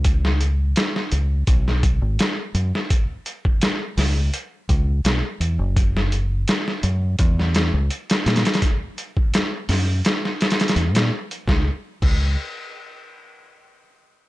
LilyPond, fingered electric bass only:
\new Staff \with { instrumentName = "Fingered electric bass" } { \clef bass \time 4/4 \key cis \dorian \tempo 4 = 84 cis,4 r8 cis,8 b,,8. gis,,16 r8 fis,16 r16 | r4. cis,8 r8 cis,8 b,,16 r16 e,16 fis,,16~ | fis,,4 r8 fis,8 e,8. cis,16 r8 ais,16 r16 | r4. fis,8 r4 e,16 ais,16 r8 |
cis,16 r8 cis,8 r2 r8. | }